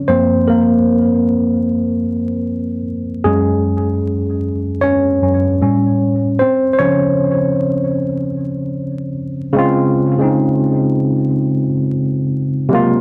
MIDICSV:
0, 0, Header, 1, 2, 480
1, 0, Start_track
1, 0, Key_signature, -5, "major"
1, 0, Tempo, 789474
1, 52, Time_signature, 4, 2, 24, 8
1, 7909, End_track
2, 0, Start_track
2, 0, Title_t, "Tine electric piano"
2, 0, Program_c, 0, 4
2, 0, Control_c, 0, 64, 127
2, 0, Note_on_c, 0, 61, 83
2, 0, Note_on_c, 0, 73, 114
2, 49, Note_on_c, 0, 72, 98
2, 51, Note_on_c, 0, 42, 62
2, 55, Note_on_c, 0, 53, 54
2, 60, Control_c, 0, 64, 0
2, 60, Note_on_c, 0, 58, 65
2, 60, Note_on_c, 0, 60, 76
2, 62, Note_off_c, 0, 61, 0
2, 79, Note_off_c, 0, 73, 0
2, 180, Control_c, 0, 64, 127
2, 273, Note_off_c, 0, 72, 0
2, 279, Note_off_c, 0, 60, 0
2, 290, Note_on_c, 0, 70, 92
2, 294, Note_off_c, 0, 58, 0
2, 301, Note_on_c, 0, 58, 76
2, 747, Note_off_c, 0, 42, 0
2, 749, Note_off_c, 0, 53, 0
2, 1707, Note_off_c, 0, 70, 0
2, 1712, Note_off_c, 0, 58, 0
2, 1972, Note_on_c, 0, 68, 99
2, 1973, Note_on_c, 0, 42, 61
2, 1976, Note_on_c, 0, 54, 52
2, 1980, Note_on_c, 0, 61, 64
2, 1981, Control_c, 0, 64, 0
2, 1981, Note_on_c, 0, 56, 75
2, 2088, Control_c, 0, 64, 127
2, 2668, Note_off_c, 0, 42, 0
2, 2670, Note_off_c, 0, 54, 0
2, 2672, Note_off_c, 0, 61, 0
2, 2908, Note_off_c, 0, 68, 0
2, 2912, Note_off_c, 0, 56, 0
2, 2927, Note_on_c, 0, 73, 104
2, 2939, Note_on_c, 0, 61, 79
2, 3173, Note_off_c, 0, 61, 0
2, 3175, Note_on_c, 0, 42, 53
2, 3176, Note_on_c, 0, 54, 42
2, 3180, Note_on_c, 0, 61, 54
2, 3390, Note_off_c, 0, 42, 0
2, 3390, Note_off_c, 0, 54, 0
2, 3393, Note_off_c, 0, 61, 0
2, 3412, Note_on_c, 0, 45, 56
2, 3415, Note_on_c, 0, 55, 60
2, 3420, Control_c, 0, 64, 0
2, 3420, Note_on_c, 0, 61, 67
2, 3519, Control_c, 0, 64, 127
2, 3868, Note_off_c, 0, 45, 0
2, 3870, Note_off_c, 0, 55, 0
2, 3872, Note_off_c, 0, 61, 0
2, 3885, Note_on_c, 0, 72, 98
2, 3899, Note_on_c, 0, 60, 74
2, 3900, Control_c, 0, 64, 0
2, 3919, Note_off_c, 0, 73, 0
2, 3998, Control_c, 0, 64, 127
2, 4086, Note_off_c, 0, 72, 0
2, 4089, Note_off_c, 0, 60, 0
2, 4093, Note_on_c, 0, 72, 71
2, 4125, Note_on_c, 0, 73, 106
2, 4129, Note_off_c, 0, 72, 0
2, 4130, Note_on_c, 0, 49, 56
2, 4134, Note_on_c, 0, 53, 53
2, 4137, Note_on_c, 0, 72, 63
2, 4139, Note_on_c, 0, 61, 72
2, 4827, Note_off_c, 0, 49, 0
2, 4829, Note_off_c, 0, 53, 0
2, 4830, Note_off_c, 0, 72, 0
2, 5544, Note_off_c, 0, 73, 0
2, 5551, Note_off_c, 0, 61, 0
2, 5795, Note_on_c, 0, 49, 106
2, 5806, Note_on_c, 0, 56, 97
2, 5818, Note_on_c, 0, 60, 103
2, 5819, Control_c, 0, 64, 0
2, 5829, Note_on_c, 0, 65, 119
2, 5932, Control_c, 0, 64, 127
2, 6165, Note_off_c, 0, 49, 0
2, 6171, Note_off_c, 0, 56, 0
2, 6176, Note_off_c, 0, 60, 0
2, 6182, Note_off_c, 0, 65, 0
2, 6188, Note_on_c, 0, 49, 74
2, 6199, Note_on_c, 0, 56, 77
2, 6211, Note_on_c, 0, 60, 75
2, 6222, Note_on_c, 0, 63, 87
2, 7083, Note_off_c, 0, 49, 0
2, 7089, Note_off_c, 0, 56, 0
2, 7095, Note_off_c, 0, 60, 0
2, 7100, Note_off_c, 0, 63, 0
2, 7714, Note_on_c, 0, 48, 106
2, 7723, Note_on_c, 0, 54, 87
2, 7732, Note_on_c, 0, 56, 83
2, 7740, Control_c, 0, 64, 0
2, 7740, Note_on_c, 0, 58, 98
2, 7749, Note_on_c, 0, 65, 118
2, 7836, Control_c, 0, 64, 127
2, 7909, Note_off_c, 0, 48, 0
2, 7909, Note_off_c, 0, 54, 0
2, 7909, Note_off_c, 0, 56, 0
2, 7909, Note_off_c, 0, 58, 0
2, 7909, Note_off_c, 0, 65, 0
2, 7909, End_track
0, 0, End_of_file